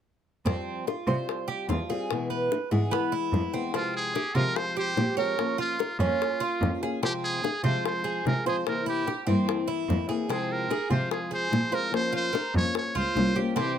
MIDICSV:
0, 0, Header, 1, 7, 480
1, 0, Start_track
1, 0, Key_signature, -4, "minor"
1, 0, Tempo, 409836
1, 541, Time_signature, 4, 2, 24, 8
1, 16145, End_track
2, 0, Start_track
2, 0, Title_t, "Muted trumpet"
2, 0, Program_c, 0, 59
2, 4397, Note_on_c, 0, 65, 91
2, 4612, Note_off_c, 0, 65, 0
2, 4641, Note_on_c, 0, 68, 86
2, 5094, Note_on_c, 0, 70, 94
2, 5111, Note_off_c, 0, 68, 0
2, 5344, Note_on_c, 0, 72, 92
2, 5361, Note_off_c, 0, 70, 0
2, 5582, Note_off_c, 0, 72, 0
2, 5605, Note_on_c, 0, 72, 83
2, 6040, Note_off_c, 0, 72, 0
2, 6070, Note_on_c, 0, 70, 77
2, 6512, Note_off_c, 0, 70, 0
2, 6563, Note_on_c, 0, 65, 81
2, 6999, Note_off_c, 0, 65, 0
2, 7026, Note_on_c, 0, 65, 85
2, 7936, Note_off_c, 0, 65, 0
2, 8254, Note_on_c, 0, 67, 94
2, 8354, Note_off_c, 0, 67, 0
2, 8479, Note_on_c, 0, 68, 89
2, 8917, Note_off_c, 0, 68, 0
2, 8950, Note_on_c, 0, 72, 94
2, 9168, Note_off_c, 0, 72, 0
2, 9206, Note_on_c, 0, 72, 71
2, 9640, Note_off_c, 0, 72, 0
2, 9685, Note_on_c, 0, 70, 74
2, 9897, Note_off_c, 0, 70, 0
2, 9930, Note_on_c, 0, 68, 69
2, 10031, Note_off_c, 0, 68, 0
2, 10165, Note_on_c, 0, 70, 80
2, 10376, Note_off_c, 0, 70, 0
2, 10404, Note_on_c, 0, 67, 73
2, 10839, Note_off_c, 0, 67, 0
2, 12079, Note_on_c, 0, 68, 80
2, 12319, Note_on_c, 0, 70, 82
2, 12336, Note_off_c, 0, 68, 0
2, 12773, Note_off_c, 0, 70, 0
2, 12780, Note_on_c, 0, 72, 75
2, 13003, Note_off_c, 0, 72, 0
2, 13019, Note_on_c, 0, 68, 72
2, 13242, Note_off_c, 0, 68, 0
2, 13272, Note_on_c, 0, 72, 93
2, 13751, Note_on_c, 0, 70, 86
2, 13769, Note_off_c, 0, 72, 0
2, 13985, Note_off_c, 0, 70, 0
2, 13994, Note_on_c, 0, 72, 86
2, 14210, Note_off_c, 0, 72, 0
2, 14237, Note_on_c, 0, 72, 96
2, 14675, Note_off_c, 0, 72, 0
2, 14720, Note_on_c, 0, 73, 99
2, 14933, Note_off_c, 0, 73, 0
2, 14956, Note_on_c, 0, 73, 90
2, 15194, Note_on_c, 0, 72, 101
2, 15212, Note_off_c, 0, 73, 0
2, 15666, Note_off_c, 0, 72, 0
2, 15911, Note_on_c, 0, 67, 88
2, 16128, Note_off_c, 0, 67, 0
2, 16145, End_track
3, 0, Start_track
3, 0, Title_t, "Cuban tres"
3, 0, Program_c, 1, 25
3, 535, Note_on_c, 1, 60, 65
3, 1003, Note_off_c, 1, 60, 0
3, 1023, Note_on_c, 1, 65, 51
3, 1255, Note_off_c, 1, 65, 0
3, 1257, Note_on_c, 1, 72, 52
3, 1725, Note_off_c, 1, 72, 0
3, 1730, Note_on_c, 1, 67, 70
3, 1968, Note_off_c, 1, 67, 0
3, 1977, Note_on_c, 1, 65, 59
3, 2212, Note_off_c, 1, 65, 0
3, 2221, Note_on_c, 1, 68, 68
3, 2687, Note_off_c, 1, 68, 0
3, 2695, Note_on_c, 1, 71, 60
3, 3164, Note_off_c, 1, 71, 0
3, 3178, Note_on_c, 1, 68, 57
3, 3412, Note_off_c, 1, 68, 0
3, 3413, Note_on_c, 1, 59, 74
3, 3649, Note_off_c, 1, 59, 0
3, 3655, Note_on_c, 1, 64, 70
3, 4124, Note_off_c, 1, 64, 0
3, 4140, Note_on_c, 1, 60, 70
3, 4370, Note_off_c, 1, 60, 0
3, 4384, Note_on_c, 1, 60, 70
3, 4848, Note_off_c, 1, 60, 0
3, 4863, Note_on_c, 1, 67, 59
3, 5089, Note_off_c, 1, 67, 0
3, 5094, Note_on_c, 1, 65, 58
3, 5562, Note_off_c, 1, 65, 0
3, 5582, Note_on_c, 1, 67, 70
3, 6047, Note_off_c, 1, 67, 0
3, 6052, Note_on_c, 1, 73, 69
3, 6521, Note_off_c, 1, 73, 0
3, 6538, Note_on_c, 1, 65, 70
3, 6772, Note_off_c, 1, 65, 0
3, 6784, Note_on_c, 1, 70, 57
3, 7015, Note_off_c, 1, 70, 0
3, 7029, Note_on_c, 1, 61, 71
3, 7490, Note_off_c, 1, 61, 0
3, 7499, Note_on_c, 1, 65, 77
3, 7965, Note_off_c, 1, 65, 0
3, 7996, Note_on_c, 1, 68, 70
3, 8221, Note_off_c, 1, 68, 0
3, 8230, Note_on_c, 1, 60, 69
3, 8691, Note_off_c, 1, 60, 0
3, 8713, Note_on_c, 1, 68, 57
3, 8940, Note_off_c, 1, 68, 0
3, 8944, Note_on_c, 1, 65, 66
3, 9408, Note_off_c, 1, 65, 0
3, 9418, Note_on_c, 1, 68, 70
3, 9884, Note_off_c, 1, 68, 0
3, 9912, Note_on_c, 1, 72, 70
3, 10372, Note_off_c, 1, 72, 0
3, 10380, Note_on_c, 1, 64, 74
3, 10612, Note_off_c, 1, 64, 0
3, 10625, Note_on_c, 1, 67, 56
3, 10848, Note_off_c, 1, 67, 0
3, 10852, Note_on_c, 1, 60, 69
3, 11321, Note_off_c, 1, 60, 0
3, 11333, Note_on_c, 1, 64, 73
3, 11801, Note_off_c, 1, 64, 0
3, 11814, Note_on_c, 1, 68, 68
3, 12049, Note_off_c, 1, 68, 0
3, 12057, Note_on_c, 1, 60, 76
3, 12524, Note_off_c, 1, 60, 0
3, 12538, Note_on_c, 1, 68, 63
3, 12771, Note_off_c, 1, 68, 0
3, 12772, Note_on_c, 1, 65, 57
3, 13241, Note_off_c, 1, 65, 0
3, 13246, Note_on_c, 1, 68, 65
3, 13718, Note_off_c, 1, 68, 0
3, 13728, Note_on_c, 1, 72, 68
3, 14199, Note_off_c, 1, 72, 0
3, 14201, Note_on_c, 1, 65, 68
3, 14439, Note_on_c, 1, 70, 63
3, 14442, Note_off_c, 1, 65, 0
3, 14681, Note_off_c, 1, 70, 0
3, 15168, Note_on_c, 1, 65, 73
3, 15638, Note_off_c, 1, 65, 0
3, 15645, Note_on_c, 1, 67, 65
3, 15875, Note_off_c, 1, 67, 0
3, 15880, Note_on_c, 1, 60, 75
3, 16145, Note_off_c, 1, 60, 0
3, 16145, End_track
4, 0, Start_track
4, 0, Title_t, "Nylon-string guitar"
4, 0, Program_c, 2, 24
4, 541, Note_on_c, 2, 53, 50
4, 557, Note_on_c, 2, 55, 51
4, 563, Note_on_c, 2, 60, 59
4, 567, Note_on_c, 2, 65, 56
4, 1012, Note_off_c, 2, 53, 0
4, 1018, Note_off_c, 2, 60, 0
4, 1020, Note_off_c, 2, 55, 0
4, 1024, Note_off_c, 2, 65, 0
4, 1263, Note_on_c, 2, 65, 60
4, 1281, Note_on_c, 2, 60, 61
4, 1292, Note_on_c, 2, 55, 57
4, 1972, Note_off_c, 2, 65, 0
4, 1978, Note_off_c, 2, 55, 0
4, 1981, Note_off_c, 2, 60, 0
4, 1984, Note_on_c, 2, 53, 46
4, 1992, Note_on_c, 2, 55, 55
4, 1999, Note_on_c, 2, 60, 49
4, 2009, Note_on_c, 2, 65, 56
4, 2212, Note_off_c, 2, 65, 0
4, 2213, Note_off_c, 2, 53, 0
4, 2217, Note_off_c, 2, 55, 0
4, 2220, Note_off_c, 2, 60, 0
4, 2226, Note_on_c, 2, 65, 57
4, 2236, Note_on_c, 2, 60, 52
4, 2251, Note_on_c, 2, 55, 47
4, 2454, Note_off_c, 2, 65, 0
4, 2459, Note_off_c, 2, 60, 0
4, 2464, Note_on_c, 2, 47, 54
4, 2466, Note_off_c, 2, 55, 0
4, 2476, Note_on_c, 2, 52, 60
4, 2481, Note_on_c, 2, 56, 59
4, 2486, Note_on_c, 2, 59, 62
4, 2497, Note_on_c, 2, 64, 54
4, 2929, Note_off_c, 2, 47, 0
4, 2932, Note_off_c, 2, 56, 0
4, 2933, Note_off_c, 2, 52, 0
4, 2937, Note_off_c, 2, 59, 0
4, 2939, Note_off_c, 2, 64, 0
4, 3177, Note_on_c, 2, 64, 73
4, 3185, Note_on_c, 2, 59, 59
4, 3199, Note_on_c, 2, 56, 64
4, 3209, Note_on_c, 2, 52, 54
4, 3881, Note_off_c, 2, 52, 0
4, 3889, Note_off_c, 2, 64, 0
4, 3893, Note_off_c, 2, 59, 0
4, 3895, Note_on_c, 2, 52, 41
4, 3896, Note_off_c, 2, 56, 0
4, 3910, Note_on_c, 2, 56, 49
4, 3916, Note_on_c, 2, 59, 47
4, 3922, Note_on_c, 2, 64, 58
4, 4124, Note_off_c, 2, 64, 0
4, 4128, Note_off_c, 2, 52, 0
4, 4136, Note_off_c, 2, 56, 0
4, 4138, Note_on_c, 2, 64, 60
4, 4139, Note_off_c, 2, 59, 0
4, 4157, Note_on_c, 2, 59, 55
4, 4167, Note_on_c, 2, 56, 51
4, 4172, Note_on_c, 2, 52, 45
4, 4370, Note_off_c, 2, 64, 0
4, 4378, Note_off_c, 2, 56, 0
4, 4379, Note_off_c, 2, 59, 0
4, 4384, Note_off_c, 2, 52, 0
4, 4385, Note_on_c, 2, 48, 55
4, 4388, Note_on_c, 2, 53, 54
4, 4392, Note_on_c, 2, 56, 64
4, 4403, Note_on_c, 2, 60, 68
4, 4408, Note_on_c, 2, 67, 64
4, 4851, Note_off_c, 2, 48, 0
4, 4855, Note_off_c, 2, 53, 0
4, 4856, Note_off_c, 2, 56, 0
4, 4862, Note_off_c, 2, 60, 0
4, 4865, Note_off_c, 2, 67, 0
4, 5106, Note_on_c, 2, 67, 70
4, 5117, Note_on_c, 2, 60, 60
4, 5123, Note_on_c, 2, 56, 63
4, 5128, Note_on_c, 2, 53, 55
4, 5813, Note_off_c, 2, 67, 0
4, 5817, Note_off_c, 2, 53, 0
4, 5819, Note_off_c, 2, 56, 0
4, 5819, Note_off_c, 2, 60, 0
4, 5822, Note_on_c, 2, 53, 46
4, 5833, Note_on_c, 2, 56, 44
4, 5840, Note_on_c, 2, 60, 55
4, 5842, Note_on_c, 2, 67, 49
4, 6049, Note_off_c, 2, 67, 0
4, 6051, Note_off_c, 2, 53, 0
4, 6057, Note_off_c, 2, 56, 0
4, 6061, Note_off_c, 2, 60, 0
4, 6063, Note_on_c, 2, 67, 68
4, 6078, Note_on_c, 2, 60, 61
4, 6082, Note_on_c, 2, 56, 54
4, 6096, Note_on_c, 2, 53, 53
4, 6279, Note_off_c, 2, 53, 0
4, 6292, Note_off_c, 2, 67, 0
4, 6293, Note_on_c, 2, 53, 51
4, 6298, Note_off_c, 2, 56, 0
4, 6300, Note_off_c, 2, 60, 0
4, 6303, Note_on_c, 2, 58, 53
4, 6312, Note_on_c, 2, 61, 58
4, 6325, Note_on_c, 2, 65, 64
4, 6767, Note_off_c, 2, 53, 0
4, 6772, Note_off_c, 2, 58, 0
4, 6776, Note_off_c, 2, 61, 0
4, 6783, Note_off_c, 2, 65, 0
4, 7015, Note_on_c, 2, 65, 57
4, 7033, Note_on_c, 2, 61, 55
4, 7044, Note_on_c, 2, 58, 61
4, 7728, Note_off_c, 2, 65, 0
4, 7735, Note_off_c, 2, 58, 0
4, 7737, Note_off_c, 2, 61, 0
4, 7738, Note_on_c, 2, 53, 47
4, 7749, Note_on_c, 2, 58, 54
4, 7760, Note_on_c, 2, 61, 56
4, 7764, Note_on_c, 2, 65, 57
4, 7963, Note_off_c, 2, 65, 0
4, 7969, Note_off_c, 2, 53, 0
4, 7975, Note_off_c, 2, 58, 0
4, 7977, Note_on_c, 2, 65, 61
4, 7980, Note_off_c, 2, 61, 0
4, 7997, Note_on_c, 2, 61, 47
4, 8005, Note_on_c, 2, 58, 52
4, 8209, Note_off_c, 2, 65, 0
4, 8217, Note_on_c, 2, 48, 55
4, 8219, Note_off_c, 2, 61, 0
4, 8223, Note_off_c, 2, 58, 0
4, 8227, Note_on_c, 2, 56, 64
4, 8228, Note_on_c, 2, 53, 62
4, 8241, Note_on_c, 2, 60, 67
4, 8244, Note_on_c, 2, 65, 62
4, 8680, Note_off_c, 2, 48, 0
4, 8687, Note_off_c, 2, 56, 0
4, 8688, Note_off_c, 2, 53, 0
4, 8690, Note_off_c, 2, 60, 0
4, 8700, Note_off_c, 2, 65, 0
4, 8939, Note_on_c, 2, 65, 65
4, 8949, Note_on_c, 2, 60, 62
4, 8953, Note_on_c, 2, 56, 61
4, 8962, Note_on_c, 2, 53, 59
4, 9646, Note_off_c, 2, 53, 0
4, 9650, Note_off_c, 2, 65, 0
4, 9657, Note_off_c, 2, 56, 0
4, 9660, Note_on_c, 2, 53, 50
4, 9669, Note_on_c, 2, 56, 45
4, 9674, Note_off_c, 2, 60, 0
4, 9679, Note_on_c, 2, 60, 54
4, 9689, Note_on_c, 2, 65, 57
4, 9890, Note_off_c, 2, 53, 0
4, 9891, Note_off_c, 2, 65, 0
4, 9895, Note_off_c, 2, 56, 0
4, 9900, Note_off_c, 2, 60, 0
4, 9905, Note_on_c, 2, 65, 59
4, 9915, Note_on_c, 2, 60, 58
4, 9924, Note_on_c, 2, 56, 57
4, 9936, Note_on_c, 2, 53, 52
4, 10133, Note_off_c, 2, 65, 0
4, 10138, Note_off_c, 2, 60, 0
4, 10142, Note_off_c, 2, 56, 0
4, 10143, Note_on_c, 2, 48, 50
4, 10146, Note_off_c, 2, 53, 0
4, 10150, Note_on_c, 2, 52, 59
4, 10156, Note_on_c, 2, 58, 51
4, 10162, Note_on_c, 2, 60, 57
4, 10170, Note_on_c, 2, 64, 58
4, 10594, Note_off_c, 2, 48, 0
4, 10600, Note_off_c, 2, 52, 0
4, 10605, Note_off_c, 2, 60, 0
4, 10607, Note_off_c, 2, 58, 0
4, 10608, Note_off_c, 2, 64, 0
4, 10857, Note_on_c, 2, 64, 69
4, 10868, Note_on_c, 2, 60, 63
4, 10879, Note_on_c, 2, 58, 57
4, 10889, Note_on_c, 2, 52, 57
4, 11548, Note_off_c, 2, 52, 0
4, 11562, Note_on_c, 2, 52, 46
4, 11563, Note_off_c, 2, 58, 0
4, 11568, Note_off_c, 2, 64, 0
4, 11577, Note_on_c, 2, 58, 49
4, 11583, Note_off_c, 2, 60, 0
4, 11588, Note_on_c, 2, 60, 53
4, 11592, Note_on_c, 2, 64, 48
4, 11785, Note_off_c, 2, 64, 0
4, 11797, Note_off_c, 2, 60, 0
4, 11799, Note_on_c, 2, 64, 62
4, 11801, Note_off_c, 2, 52, 0
4, 11809, Note_off_c, 2, 58, 0
4, 11811, Note_on_c, 2, 60, 57
4, 11823, Note_on_c, 2, 58, 47
4, 11825, Note_on_c, 2, 52, 47
4, 12039, Note_off_c, 2, 64, 0
4, 12041, Note_off_c, 2, 52, 0
4, 12042, Note_on_c, 2, 48, 58
4, 12045, Note_off_c, 2, 60, 0
4, 12046, Note_on_c, 2, 53, 58
4, 12052, Note_off_c, 2, 58, 0
4, 12056, Note_on_c, 2, 56, 68
4, 12060, Note_on_c, 2, 60, 63
4, 12068, Note_on_c, 2, 65, 57
4, 12515, Note_off_c, 2, 48, 0
4, 12523, Note_off_c, 2, 53, 0
4, 12528, Note_off_c, 2, 56, 0
4, 12528, Note_off_c, 2, 65, 0
4, 12530, Note_off_c, 2, 60, 0
4, 12761, Note_on_c, 2, 65, 64
4, 12769, Note_on_c, 2, 60, 56
4, 12778, Note_on_c, 2, 56, 60
4, 12786, Note_on_c, 2, 53, 61
4, 13461, Note_off_c, 2, 53, 0
4, 13468, Note_off_c, 2, 56, 0
4, 13475, Note_on_c, 2, 53, 48
4, 13480, Note_off_c, 2, 65, 0
4, 13482, Note_on_c, 2, 56, 50
4, 13491, Note_off_c, 2, 60, 0
4, 13496, Note_on_c, 2, 60, 50
4, 13507, Note_on_c, 2, 65, 53
4, 13707, Note_off_c, 2, 65, 0
4, 13711, Note_off_c, 2, 60, 0
4, 13717, Note_off_c, 2, 53, 0
4, 13721, Note_off_c, 2, 56, 0
4, 13721, Note_on_c, 2, 65, 55
4, 13726, Note_on_c, 2, 60, 50
4, 13734, Note_on_c, 2, 56, 56
4, 13750, Note_on_c, 2, 53, 48
4, 13940, Note_off_c, 2, 53, 0
4, 13954, Note_on_c, 2, 53, 57
4, 13960, Note_off_c, 2, 65, 0
4, 13962, Note_off_c, 2, 60, 0
4, 13962, Note_on_c, 2, 58, 61
4, 13966, Note_off_c, 2, 56, 0
4, 13971, Note_on_c, 2, 61, 62
4, 13977, Note_on_c, 2, 65, 65
4, 13982, Note_on_c, 2, 72, 72
4, 14430, Note_off_c, 2, 53, 0
4, 14438, Note_off_c, 2, 61, 0
4, 14440, Note_off_c, 2, 58, 0
4, 14443, Note_off_c, 2, 65, 0
4, 14445, Note_off_c, 2, 72, 0
4, 14691, Note_on_c, 2, 72, 69
4, 14696, Note_on_c, 2, 65, 61
4, 14710, Note_on_c, 2, 61, 58
4, 14719, Note_on_c, 2, 58, 50
4, 15391, Note_off_c, 2, 58, 0
4, 15405, Note_off_c, 2, 61, 0
4, 15405, Note_on_c, 2, 58, 52
4, 15407, Note_off_c, 2, 65, 0
4, 15419, Note_on_c, 2, 61, 43
4, 15422, Note_on_c, 2, 65, 52
4, 15433, Note_off_c, 2, 72, 0
4, 15438, Note_on_c, 2, 72, 53
4, 15641, Note_off_c, 2, 72, 0
4, 15642, Note_off_c, 2, 58, 0
4, 15649, Note_off_c, 2, 61, 0
4, 15650, Note_off_c, 2, 65, 0
4, 15655, Note_on_c, 2, 72, 62
4, 15664, Note_on_c, 2, 65, 57
4, 15670, Note_on_c, 2, 61, 57
4, 15680, Note_on_c, 2, 58, 51
4, 15887, Note_off_c, 2, 72, 0
4, 15891, Note_off_c, 2, 65, 0
4, 15894, Note_off_c, 2, 61, 0
4, 15899, Note_off_c, 2, 58, 0
4, 15902, Note_on_c, 2, 48, 66
4, 15913, Note_on_c, 2, 52, 56
4, 15915, Note_on_c, 2, 55, 67
4, 15921, Note_on_c, 2, 60, 70
4, 15928, Note_on_c, 2, 64, 63
4, 16145, Note_off_c, 2, 48, 0
4, 16145, Note_off_c, 2, 52, 0
4, 16145, Note_off_c, 2, 55, 0
4, 16145, Note_off_c, 2, 60, 0
4, 16145, Note_off_c, 2, 64, 0
4, 16145, End_track
5, 0, Start_track
5, 0, Title_t, "Cello"
5, 0, Program_c, 3, 42
5, 536, Note_on_c, 3, 41, 79
5, 630, Note_off_c, 3, 41, 0
5, 1254, Note_on_c, 3, 48, 93
5, 1348, Note_off_c, 3, 48, 0
5, 1976, Note_on_c, 3, 40, 71
5, 2070, Note_off_c, 3, 40, 0
5, 3182, Note_on_c, 3, 44, 86
5, 3275, Note_off_c, 3, 44, 0
5, 3895, Note_on_c, 3, 41, 73
5, 3989, Note_off_c, 3, 41, 0
5, 5096, Note_on_c, 3, 48, 89
5, 5190, Note_off_c, 3, 48, 0
5, 5820, Note_on_c, 3, 46, 76
5, 5913, Note_off_c, 3, 46, 0
5, 7017, Note_on_c, 3, 41, 90
5, 7111, Note_off_c, 3, 41, 0
5, 7745, Note_on_c, 3, 41, 89
5, 7838, Note_off_c, 3, 41, 0
5, 8942, Note_on_c, 3, 48, 90
5, 9036, Note_off_c, 3, 48, 0
5, 9672, Note_on_c, 3, 48, 81
5, 9766, Note_off_c, 3, 48, 0
5, 10861, Note_on_c, 3, 43, 86
5, 10954, Note_off_c, 3, 43, 0
5, 11582, Note_on_c, 3, 41, 79
5, 11676, Note_off_c, 3, 41, 0
5, 12773, Note_on_c, 3, 48, 89
5, 12866, Note_off_c, 3, 48, 0
5, 13491, Note_on_c, 3, 46, 85
5, 13585, Note_off_c, 3, 46, 0
5, 14694, Note_on_c, 3, 41, 88
5, 14787, Note_off_c, 3, 41, 0
5, 15172, Note_on_c, 3, 37, 60
5, 15266, Note_off_c, 3, 37, 0
5, 15411, Note_on_c, 3, 36, 76
5, 15504, Note_off_c, 3, 36, 0
5, 16145, End_track
6, 0, Start_track
6, 0, Title_t, "Muted nylon-string guitar strokes"
6, 1027, Note_on_c, 9, 29, 52
6, 1144, Note_off_c, 9, 29, 0
6, 2943, Note_on_c, 9, 29, 55
6, 3060, Note_off_c, 9, 29, 0
6, 4865, Note_on_c, 9, 29, 46
6, 4982, Note_off_c, 9, 29, 0
6, 6792, Note_on_c, 9, 29, 60
6, 6909, Note_off_c, 9, 29, 0
6, 8694, Note_on_c, 9, 29, 56
6, 8812, Note_off_c, 9, 29, 0
6, 10608, Note_on_c, 9, 29, 48
6, 10725, Note_off_c, 9, 29, 0
6, 12529, Note_on_c, 9, 29, 54
6, 12646, Note_off_c, 9, 29, 0
6, 14444, Note_on_c, 9, 29, 63
6, 14561, Note_off_c, 9, 29, 0
6, 16145, End_track
7, 0, Start_track
7, 0, Title_t, "Drums"
7, 551, Note_on_c, 9, 60, 51
7, 668, Note_off_c, 9, 60, 0
7, 1029, Note_on_c, 9, 60, 48
7, 1146, Note_off_c, 9, 60, 0
7, 1269, Note_on_c, 9, 60, 31
7, 1386, Note_off_c, 9, 60, 0
7, 1510, Note_on_c, 9, 60, 49
7, 1627, Note_off_c, 9, 60, 0
7, 1988, Note_on_c, 9, 60, 25
7, 1988, Note_on_c, 9, 61, 66
7, 2106, Note_off_c, 9, 60, 0
7, 2106, Note_off_c, 9, 61, 0
7, 2224, Note_on_c, 9, 60, 32
7, 2341, Note_off_c, 9, 60, 0
7, 2466, Note_on_c, 9, 60, 56
7, 2583, Note_off_c, 9, 60, 0
7, 2949, Note_on_c, 9, 60, 54
7, 3066, Note_off_c, 9, 60, 0
7, 3191, Note_on_c, 9, 60, 30
7, 3308, Note_off_c, 9, 60, 0
7, 3432, Note_on_c, 9, 60, 57
7, 3549, Note_off_c, 9, 60, 0
7, 3910, Note_on_c, 9, 60, 29
7, 3910, Note_on_c, 9, 61, 59
7, 4027, Note_off_c, 9, 60, 0
7, 4027, Note_off_c, 9, 61, 0
7, 4147, Note_on_c, 9, 60, 32
7, 4264, Note_off_c, 9, 60, 0
7, 4379, Note_on_c, 9, 60, 56
7, 4496, Note_off_c, 9, 60, 0
7, 4869, Note_on_c, 9, 60, 51
7, 4986, Note_off_c, 9, 60, 0
7, 5108, Note_on_c, 9, 60, 33
7, 5225, Note_off_c, 9, 60, 0
7, 5345, Note_on_c, 9, 60, 62
7, 5462, Note_off_c, 9, 60, 0
7, 5824, Note_on_c, 9, 60, 30
7, 5824, Note_on_c, 9, 61, 72
7, 5941, Note_off_c, 9, 60, 0
7, 5941, Note_off_c, 9, 61, 0
7, 6068, Note_on_c, 9, 60, 35
7, 6185, Note_off_c, 9, 60, 0
7, 6311, Note_on_c, 9, 60, 54
7, 6428, Note_off_c, 9, 60, 0
7, 6796, Note_on_c, 9, 60, 55
7, 6913, Note_off_c, 9, 60, 0
7, 7040, Note_on_c, 9, 60, 33
7, 7157, Note_off_c, 9, 60, 0
7, 7283, Note_on_c, 9, 60, 58
7, 7400, Note_off_c, 9, 60, 0
7, 7763, Note_on_c, 9, 60, 27
7, 7763, Note_on_c, 9, 61, 72
7, 7880, Note_off_c, 9, 60, 0
7, 7880, Note_off_c, 9, 61, 0
7, 8000, Note_on_c, 9, 60, 33
7, 8117, Note_off_c, 9, 60, 0
7, 8236, Note_on_c, 9, 60, 57
7, 8353, Note_off_c, 9, 60, 0
7, 8720, Note_on_c, 9, 60, 58
7, 8837, Note_off_c, 9, 60, 0
7, 8953, Note_on_c, 9, 60, 34
7, 9070, Note_off_c, 9, 60, 0
7, 9200, Note_on_c, 9, 60, 60
7, 9317, Note_off_c, 9, 60, 0
7, 9680, Note_on_c, 9, 60, 27
7, 9680, Note_on_c, 9, 61, 69
7, 9797, Note_off_c, 9, 60, 0
7, 9797, Note_off_c, 9, 61, 0
7, 9926, Note_on_c, 9, 60, 33
7, 10043, Note_off_c, 9, 60, 0
7, 10150, Note_on_c, 9, 60, 56
7, 10267, Note_off_c, 9, 60, 0
7, 10631, Note_on_c, 9, 60, 47
7, 10748, Note_off_c, 9, 60, 0
7, 10877, Note_on_c, 9, 60, 35
7, 10995, Note_off_c, 9, 60, 0
7, 11112, Note_on_c, 9, 60, 62
7, 11229, Note_off_c, 9, 60, 0
7, 11595, Note_on_c, 9, 60, 27
7, 11595, Note_on_c, 9, 61, 62
7, 11712, Note_off_c, 9, 60, 0
7, 11712, Note_off_c, 9, 61, 0
7, 11837, Note_on_c, 9, 60, 36
7, 11954, Note_off_c, 9, 60, 0
7, 12068, Note_on_c, 9, 60, 51
7, 12185, Note_off_c, 9, 60, 0
7, 12547, Note_on_c, 9, 60, 51
7, 12664, Note_off_c, 9, 60, 0
7, 12785, Note_on_c, 9, 60, 32
7, 12902, Note_off_c, 9, 60, 0
7, 13017, Note_on_c, 9, 60, 57
7, 13134, Note_off_c, 9, 60, 0
7, 13503, Note_on_c, 9, 60, 27
7, 13503, Note_on_c, 9, 61, 63
7, 13620, Note_off_c, 9, 60, 0
7, 13620, Note_off_c, 9, 61, 0
7, 13742, Note_on_c, 9, 60, 33
7, 13859, Note_off_c, 9, 60, 0
7, 13983, Note_on_c, 9, 60, 52
7, 14100, Note_off_c, 9, 60, 0
7, 14463, Note_on_c, 9, 60, 57
7, 14580, Note_off_c, 9, 60, 0
7, 14704, Note_on_c, 9, 60, 33
7, 14821, Note_off_c, 9, 60, 0
7, 14934, Note_on_c, 9, 60, 57
7, 15051, Note_off_c, 9, 60, 0
7, 15422, Note_on_c, 9, 60, 26
7, 15422, Note_on_c, 9, 61, 69
7, 15539, Note_off_c, 9, 60, 0
7, 15539, Note_off_c, 9, 61, 0
7, 15651, Note_on_c, 9, 60, 36
7, 15768, Note_off_c, 9, 60, 0
7, 15894, Note_on_c, 9, 60, 54
7, 16011, Note_off_c, 9, 60, 0
7, 16145, End_track
0, 0, End_of_file